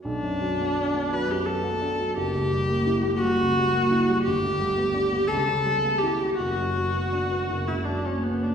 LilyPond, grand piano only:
\new Staff \with { instrumentName = "Grand piano" } { \clef bass \time 6/8 \key b \minor \tempo 4. = 56 b,,16 fis,16 fis16 b16 d'16 b16 fis16 fis,16 fis16 b16 d'16 fis16 | fis,,16 cis,16 g16 ais16 e'16 ais16 g16 cis,16 g16 ais16 e'16 g16 | g,,16 d,16 g16 b16 d'16 b16 cis,16 cis16 g16 b16 e'16 g'16 | fis,,16 fis,16 fis16 b16 d'16 b16 fis,,16 cis,16 fis16 ais16 cis'16 ais16 | }